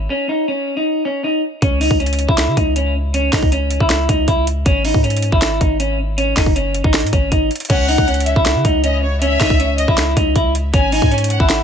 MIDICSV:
0, 0, Header, 1, 5, 480
1, 0, Start_track
1, 0, Key_signature, 4, "minor"
1, 0, Tempo, 379747
1, 130, Time_signature, 4, 2, 24, 8
1, 14705, End_track
2, 0, Start_track
2, 0, Title_t, "Violin section"
2, 0, Program_c, 0, 48
2, 9729, Note_on_c, 0, 78, 112
2, 10406, Note_off_c, 0, 78, 0
2, 10447, Note_on_c, 0, 76, 78
2, 10677, Note_off_c, 0, 76, 0
2, 11167, Note_on_c, 0, 75, 91
2, 11396, Note_off_c, 0, 75, 0
2, 11409, Note_on_c, 0, 73, 86
2, 11638, Note_off_c, 0, 73, 0
2, 11649, Note_on_c, 0, 76, 121
2, 12326, Note_off_c, 0, 76, 0
2, 12367, Note_on_c, 0, 75, 88
2, 12597, Note_off_c, 0, 75, 0
2, 13566, Note_on_c, 0, 80, 103
2, 14245, Note_off_c, 0, 80, 0
2, 14292, Note_on_c, 0, 78, 92
2, 14519, Note_off_c, 0, 78, 0
2, 14705, End_track
3, 0, Start_track
3, 0, Title_t, "Clean electric guitar"
3, 0, Program_c, 1, 27
3, 129, Note_on_c, 1, 61, 95
3, 346, Note_off_c, 1, 61, 0
3, 368, Note_on_c, 1, 63, 74
3, 585, Note_off_c, 1, 63, 0
3, 608, Note_on_c, 1, 61, 83
3, 948, Note_off_c, 1, 61, 0
3, 971, Note_on_c, 1, 63, 76
3, 1309, Note_off_c, 1, 63, 0
3, 1330, Note_on_c, 1, 61, 84
3, 1546, Note_off_c, 1, 61, 0
3, 1569, Note_on_c, 1, 63, 82
3, 1786, Note_off_c, 1, 63, 0
3, 2049, Note_on_c, 1, 61, 111
3, 2265, Note_off_c, 1, 61, 0
3, 2288, Note_on_c, 1, 63, 89
3, 2505, Note_off_c, 1, 63, 0
3, 2528, Note_on_c, 1, 61, 80
3, 2867, Note_off_c, 1, 61, 0
3, 2888, Note_on_c, 1, 64, 87
3, 3227, Note_off_c, 1, 64, 0
3, 3248, Note_on_c, 1, 63, 82
3, 3465, Note_off_c, 1, 63, 0
3, 3490, Note_on_c, 1, 61, 85
3, 3706, Note_off_c, 1, 61, 0
3, 3971, Note_on_c, 1, 61, 108
3, 4186, Note_off_c, 1, 61, 0
3, 4210, Note_on_c, 1, 63, 78
3, 4426, Note_off_c, 1, 63, 0
3, 4450, Note_on_c, 1, 61, 83
3, 4788, Note_off_c, 1, 61, 0
3, 4812, Note_on_c, 1, 64, 78
3, 5149, Note_off_c, 1, 64, 0
3, 5171, Note_on_c, 1, 63, 79
3, 5387, Note_off_c, 1, 63, 0
3, 5409, Note_on_c, 1, 64, 90
3, 5626, Note_off_c, 1, 64, 0
3, 5889, Note_on_c, 1, 61, 109
3, 6106, Note_off_c, 1, 61, 0
3, 6130, Note_on_c, 1, 63, 84
3, 6346, Note_off_c, 1, 63, 0
3, 6368, Note_on_c, 1, 61, 80
3, 6708, Note_off_c, 1, 61, 0
3, 6728, Note_on_c, 1, 64, 82
3, 7068, Note_off_c, 1, 64, 0
3, 7089, Note_on_c, 1, 63, 76
3, 7306, Note_off_c, 1, 63, 0
3, 7328, Note_on_c, 1, 61, 83
3, 7545, Note_off_c, 1, 61, 0
3, 7808, Note_on_c, 1, 61, 94
3, 8025, Note_off_c, 1, 61, 0
3, 8048, Note_on_c, 1, 63, 76
3, 8265, Note_off_c, 1, 63, 0
3, 8289, Note_on_c, 1, 61, 79
3, 8628, Note_off_c, 1, 61, 0
3, 8649, Note_on_c, 1, 63, 76
3, 8988, Note_off_c, 1, 63, 0
3, 9009, Note_on_c, 1, 61, 83
3, 9225, Note_off_c, 1, 61, 0
3, 9248, Note_on_c, 1, 63, 81
3, 9465, Note_off_c, 1, 63, 0
3, 9728, Note_on_c, 1, 61, 115
3, 9945, Note_off_c, 1, 61, 0
3, 9969, Note_on_c, 1, 63, 95
3, 10185, Note_off_c, 1, 63, 0
3, 10210, Note_on_c, 1, 61, 83
3, 10548, Note_off_c, 1, 61, 0
3, 10570, Note_on_c, 1, 64, 85
3, 10909, Note_off_c, 1, 64, 0
3, 10930, Note_on_c, 1, 63, 84
3, 11146, Note_off_c, 1, 63, 0
3, 11170, Note_on_c, 1, 61, 89
3, 11386, Note_off_c, 1, 61, 0
3, 11650, Note_on_c, 1, 61, 114
3, 11866, Note_off_c, 1, 61, 0
3, 11888, Note_on_c, 1, 63, 80
3, 12105, Note_off_c, 1, 63, 0
3, 12130, Note_on_c, 1, 61, 86
3, 12469, Note_off_c, 1, 61, 0
3, 12492, Note_on_c, 1, 64, 80
3, 12829, Note_off_c, 1, 64, 0
3, 12851, Note_on_c, 1, 63, 80
3, 13066, Note_off_c, 1, 63, 0
3, 13090, Note_on_c, 1, 64, 90
3, 13306, Note_off_c, 1, 64, 0
3, 13572, Note_on_c, 1, 61, 111
3, 13787, Note_off_c, 1, 61, 0
3, 13811, Note_on_c, 1, 63, 83
3, 14027, Note_off_c, 1, 63, 0
3, 14049, Note_on_c, 1, 61, 83
3, 14388, Note_off_c, 1, 61, 0
3, 14410, Note_on_c, 1, 64, 81
3, 14705, Note_off_c, 1, 64, 0
3, 14705, End_track
4, 0, Start_track
4, 0, Title_t, "808-style bass"
4, 0, Program_c, 2, 38
4, 2050, Note_on_c, 2, 37, 117
4, 2395, Note_off_c, 2, 37, 0
4, 2410, Note_on_c, 2, 37, 104
4, 2871, Note_off_c, 2, 37, 0
4, 2889, Note_on_c, 2, 37, 113
4, 3129, Note_on_c, 2, 49, 100
4, 3148, Note_off_c, 2, 37, 0
4, 3244, Note_off_c, 2, 49, 0
4, 3250, Note_on_c, 2, 37, 109
4, 4171, Note_off_c, 2, 37, 0
4, 4208, Note_on_c, 2, 37, 104
4, 4785, Note_off_c, 2, 37, 0
4, 4808, Note_on_c, 2, 37, 105
4, 5155, Note_off_c, 2, 37, 0
4, 5169, Note_on_c, 2, 37, 112
4, 5400, Note_off_c, 2, 37, 0
4, 5408, Note_on_c, 2, 37, 104
4, 5870, Note_off_c, 2, 37, 0
4, 5889, Note_on_c, 2, 32, 113
4, 6235, Note_off_c, 2, 32, 0
4, 6250, Note_on_c, 2, 44, 105
4, 6711, Note_off_c, 2, 44, 0
4, 6729, Note_on_c, 2, 32, 105
4, 7075, Note_off_c, 2, 32, 0
4, 7090, Note_on_c, 2, 32, 111
4, 8012, Note_off_c, 2, 32, 0
4, 8049, Note_on_c, 2, 30, 105
4, 8626, Note_off_c, 2, 30, 0
4, 8649, Note_on_c, 2, 32, 109
4, 8889, Note_on_c, 2, 44, 102
4, 8908, Note_off_c, 2, 32, 0
4, 9004, Note_off_c, 2, 44, 0
4, 9011, Note_on_c, 2, 32, 109
4, 9241, Note_off_c, 2, 32, 0
4, 9250, Note_on_c, 2, 32, 108
4, 9480, Note_off_c, 2, 32, 0
4, 9730, Note_on_c, 2, 37, 116
4, 10076, Note_off_c, 2, 37, 0
4, 10091, Note_on_c, 2, 37, 106
4, 10551, Note_off_c, 2, 37, 0
4, 10569, Note_on_c, 2, 37, 107
4, 10810, Note_on_c, 2, 49, 102
4, 10829, Note_off_c, 2, 37, 0
4, 10924, Note_off_c, 2, 49, 0
4, 10931, Note_on_c, 2, 37, 110
4, 11852, Note_off_c, 2, 37, 0
4, 11889, Note_on_c, 2, 37, 108
4, 12465, Note_off_c, 2, 37, 0
4, 12490, Note_on_c, 2, 37, 105
4, 12835, Note_off_c, 2, 37, 0
4, 12851, Note_on_c, 2, 37, 113
4, 13081, Note_off_c, 2, 37, 0
4, 13090, Note_on_c, 2, 37, 109
4, 13551, Note_off_c, 2, 37, 0
4, 13570, Note_on_c, 2, 32, 122
4, 13915, Note_off_c, 2, 32, 0
4, 13930, Note_on_c, 2, 44, 107
4, 14391, Note_off_c, 2, 44, 0
4, 14410, Note_on_c, 2, 32, 106
4, 14705, Note_off_c, 2, 32, 0
4, 14705, End_track
5, 0, Start_track
5, 0, Title_t, "Drums"
5, 2049, Note_on_c, 9, 42, 72
5, 2050, Note_on_c, 9, 36, 124
5, 2175, Note_off_c, 9, 42, 0
5, 2176, Note_off_c, 9, 36, 0
5, 2287, Note_on_c, 9, 46, 76
5, 2410, Note_on_c, 9, 36, 94
5, 2414, Note_off_c, 9, 46, 0
5, 2530, Note_on_c, 9, 42, 45
5, 2536, Note_off_c, 9, 36, 0
5, 2609, Note_off_c, 9, 42, 0
5, 2609, Note_on_c, 9, 42, 61
5, 2689, Note_off_c, 9, 42, 0
5, 2689, Note_on_c, 9, 42, 78
5, 2764, Note_off_c, 9, 42, 0
5, 2764, Note_on_c, 9, 42, 81
5, 2889, Note_on_c, 9, 36, 98
5, 2891, Note_off_c, 9, 42, 0
5, 3010, Note_on_c, 9, 38, 114
5, 3011, Note_on_c, 9, 42, 88
5, 3015, Note_off_c, 9, 36, 0
5, 3025, Note_on_c, 9, 26, 93
5, 3136, Note_off_c, 9, 38, 0
5, 3137, Note_off_c, 9, 42, 0
5, 3151, Note_off_c, 9, 26, 0
5, 3249, Note_on_c, 9, 42, 73
5, 3250, Note_on_c, 9, 36, 102
5, 3376, Note_off_c, 9, 36, 0
5, 3376, Note_off_c, 9, 42, 0
5, 3488, Note_on_c, 9, 42, 68
5, 3614, Note_off_c, 9, 42, 0
5, 3969, Note_on_c, 9, 42, 74
5, 4096, Note_off_c, 9, 42, 0
5, 4206, Note_on_c, 9, 46, 77
5, 4208, Note_on_c, 9, 36, 92
5, 4210, Note_on_c, 9, 38, 93
5, 4225, Note_on_c, 9, 26, 73
5, 4329, Note_off_c, 9, 36, 0
5, 4329, Note_on_c, 9, 36, 94
5, 4332, Note_off_c, 9, 46, 0
5, 4336, Note_off_c, 9, 38, 0
5, 4351, Note_off_c, 9, 26, 0
5, 4450, Note_on_c, 9, 42, 69
5, 4456, Note_off_c, 9, 36, 0
5, 4576, Note_off_c, 9, 42, 0
5, 4683, Note_on_c, 9, 42, 80
5, 4809, Note_on_c, 9, 36, 96
5, 4810, Note_off_c, 9, 42, 0
5, 4930, Note_on_c, 9, 38, 112
5, 4931, Note_on_c, 9, 42, 85
5, 4935, Note_off_c, 9, 36, 0
5, 4945, Note_on_c, 9, 26, 92
5, 5056, Note_off_c, 9, 38, 0
5, 5057, Note_off_c, 9, 42, 0
5, 5071, Note_off_c, 9, 26, 0
5, 5169, Note_on_c, 9, 36, 101
5, 5170, Note_on_c, 9, 42, 84
5, 5296, Note_off_c, 9, 36, 0
5, 5296, Note_off_c, 9, 42, 0
5, 5407, Note_on_c, 9, 42, 70
5, 5409, Note_on_c, 9, 36, 90
5, 5534, Note_off_c, 9, 42, 0
5, 5535, Note_off_c, 9, 36, 0
5, 5653, Note_on_c, 9, 42, 80
5, 5779, Note_off_c, 9, 42, 0
5, 5888, Note_on_c, 9, 42, 75
5, 5889, Note_on_c, 9, 36, 123
5, 6015, Note_off_c, 9, 36, 0
5, 6015, Note_off_c, 9, 42, 0
5, 6125, Note_on_c, 9, 46, 78
5, 6249, Note_on_c, 9, 36, 93
5, 6252, Note_off_c, 9, 46, 0
5, 6370, Note_on_c, 9, 42, 46
5, 6376, Note_off_c, 9, 36, 0
5, 6449, Note_off_c, 9, 42, 0
5, 6449, Note_on_c, 9, 42, 59
5, 6529, Note_off_c, 9, 42, 0
5, 6529, Note_on_c, 9, 42, 75
5, 6604, Note_off_c, 9, 42, 0
5, 6604, Note_on_c, 9, 42, 82
5, 6729, Note_on_c, 9, 36, 95
5, 6731, Note_off_c, 9, 42, 0
5, 6850, Note_on_c, 9, 38, 112
5, 6852, Note_on_c, 9, 42, 93
5, 6855, Note_off_c, 9, 36, 0
5, 6865, Note_on_c, 9, 26, 89
5, 6977, Note_off_c, 9, 38, 0
5, 6978, Note_off_c, 9, 42, 0
5, 6992, Note_off_c, 9, 26, 0
5, 7090, Note_on_c, 9, 36, 102
5, 7090, Note_on_c, 9, 42, 77
5, 7216, Note_off_c, 9, 36, 0
5, 7216, Note_off_c, 9, 42, 0
5, 7329, Note_on_c, 9, 42, 73
5, 7456, Note_off_c, 9, 42, 0
5, 7811, Note_on_c, 9, 42, 72
5, 7937, Note_off_c, 9, 42, 0
5, 8047, Note_on_c, 9, 46, 76
5, 8049, Note_on_c, 9, 36, 90
5, 8051, Note_on_c, 9, 38, 92
5, 8066, Note_on_c, 9, 26, 71
5, 8170, Note_off_c, 9, 36, 0
5, 8170, Note_on_c, 9, 36, 96
5, 8174, Note_off_c, 9, 46, 0
5, 8177, Note_off_c, 9, 38, 0
5, 8192, Note_off_c, 9, 26, 0
5, 8292, Note_on_c, 9, 42, 73
5, 8297, Note_off_c, 9, 36, 0
5, 8419, Note_off_c, 9, 42, 0
5, 8526, Note_on_c, 9, 42, 79
5, 8650, Note_on_c, 9, 36, 98
5, 8652, Note_off_c, 9, 42, 0
5, 8770, Note_on_c, 9, 42, 72
5, 8772, Note_on_c, 9, 38, 115
5, 8776, Note_off_c, 9, 36, 0
5, 8787, Note_on_c, 9, 26, 92
5, 8850, Note_off_c, 9, 42, 0
5, 8850, Note_on_c, 9, 42, 72
5, 8898, Note_off_c, 9, 38, 0
5, 8913, Note_off_c, 9, 26, 0
5, 8930, Note_off_c, 9, 42, 0
5, 8930, Note_on_c, 9, 42, 75
5, 9011, Note_off_c, 9, 42, 0
5, 9011, Note_on_c, 9, 36, 104
5, 9011, Note_on_c, 9, 42, 82
5, 9137, Note_off_c, 9, 36, 0
5, 9138, Note_off_c, 9, 42, 0
5, 9249, Note_on_c, 9, 42, 72
5, 9250, Note_on_c, 9, 36, 93
5, 9376, Note_off_c, 9, 36, 0
5, 9376, Note_off_c, 9, 42, 0
5, 9490, Note_on_c, 9, 42, 51
5, 9550, Note_off_c, 9, 42, 0
5, 9550, Note_on_c, 9, 42, 62
5, 9609, Note_off_c, 9, 42, 0
5, 9609, Note_on_c, 9, 42, 76
5, 9669, Note_off_c, 9, 42, 0
5, 9669, Note_on_c, 9, 42, 84
5, 9730, Note_off_c, 9, 42, 0
5, 9730, Note_on_c, 9, 36, 125
5, 9730, Note_on_c, 9, 42, 75
5, 9730, Note_on_c, 9, 49, 108
5, 9856, Note_off_c, 9, 36, 0
5, 9856, Note_off_c, 9, 42, 0
5, 9856, Note_off_c, 9, 49, 0
5, 9967, Note_on_c, 9, 46, 77
5, 10090, Note_on_c, 9, 36, 103
5, 10094, Note_off_c, 9, 46, 0
5, 10210, Note_on_c, 9, 42, 45
5, 10217, Note_off_c, 9, 36, 0
5, 10290, Note_off_c, 9, 42, 0
5, 10290, Note_on_c, 9, 42, 61
5, 10371, Note_off_c, 9, 42, 0
5, 10371, Note_on_c, 9, 42, 79
5, 10445, Note_off_c, 9, 42, 0
5, 10445, Note_on_c, 9, 42, 81
5, 10570, Note_on_c, 9, 36, 98
5, 10571, Note_off_c, 9, 42, 0
5, 10692, Note_on_c, 9, 38, 116
5, 10693, Note_on_c, 9, 42, 91
5, 10696, Note_off_c, 9, 36, 0
5, 10707, Note_on_c, 9, 26, 93
5, 10818, Note_off_c, 9, 38, 0
5, 10819, Note_off_c, 9, 42, 0
5, 10833, Note_off_c, 9, 26, 0
5, 10931, Note_on_c, 9, 36, 105
5, 10931, Note_on_c, 9, 42, 79
5, 11057, Note_off_c, 9, 36, 0
5, 11057, Note_off_c, 9, 42, 0
5, 11170, Note_on_c, 9, 42, 71
5, 11296, Note_off_c, 9, 42, 0
5, 11650, Note_on_c, 9, 42, 77
5, 11777, Note_off_c, 9, 42, 0
5, 11887, Note_on_c, 9, 46, 79
5, 11889, Note_on_c, 9, 36, 96
5, 11891, Note_on_c, 9, 38, 93
5, 11906, Note_on_c, 9, 26, 77
5, 12010, Note_off_c, 9, 36, 0
5, 12010, Note_on_c, 9, 36, 98
5, 12013, Note_off_c, 9, 46, 0
5, 12017, Note_off_c, 9, 38, 0
5, 12032, Note_off_c, 9, 26, 0
5, 12132, Note_on_c, 9, 42, 73
5, 12137, Note_off_c, 9, 36, 0
5, 12258, Note_off_c, 9, 42, 0
5, 12366, Note_on_c, 9, 42, 81
5, 12490, Note_on_c, 9, 36, 98
5, 12492, Note_off_c, 9, 42, 0
5, 12612, Note_on_c, 9, 38, 114
5, 12613, Note_on_c, 9, 42, 90
5, 12616, Note_off_c, 9, 36, 0
5, 12627, Note_on_c, 9, 26, 92
5, 12739, Note_off_c, 9, 38, 0
5, 12740, Note_off_c, 9, 42, 0
5, 12754, Note_off_c, 9, 26, 0
5, 12851, Note_on_c, 9, 36, 103
5, 12852, Note_on_c, 9, 42, 83
5, 12977, Note_off_c, 9, 36, 0
5, 12979, Note_off_c, 9, 42, 0
5, 13090, Note_on_c, 9, 36, 90
5, 13090, Note_on_c, 9, 42, 73
5, 13216, Note_off_c, 9, 42, 0
5, 13217, Note_off_c, 9, 36, 0
5, 13335, Note_on_c, 9, 42, 83
5, 13461, Note_off_c, 9, 42, 0
5, 13570, Note_on_c, 9, 36, 121
5, 13570, Note_on_c, 9, 42, 75
5, 13696, Note_off_c, 9, 36, 0
5, 13696, Note_off_c, 9, 42, 0
5, 13807, Note_on_c, 9, 46, 77
5, 13930, Note_on_c, 9, 36, 101
5, 13934, Note_off_c, 9, 46, 0
5, 14050, Note_on_c, 9, 42, 45
5, 14057, Note_off_c, 9, 36, 0
5, 14130, Note_off_c, 9, 42, 0
5, 14130, Note_on_c, 9, 42, 61
5, 14210, Note_off_c, 9, 42, 0
5, 14210, Note_on_c, 9, 42, 78
5, 14285, Note_off_c, 9, 42, 0
5, 14285, Note_on_c, 9, 42, 83
5, 14410, Note_on_c, 9, 36, 100
5, 14412, Note_off_c, 9, 42, 0
5, 14532, Note_on_c, 9, 38, 119
5, 14533, Note_on_c, 9, 42, 95
5, 14536, Note_off_c, 9, 36, 0
5, 14546, Note_on_c, 9, 26, 92
5, 14658, Note_off_c, 9, 38, 0
5, 14659, Note_off_c, 9, 42, 0
5, 14673, Note_off_c, 9, 26, 0
5, 14705, End_track
0, 0, End_of_file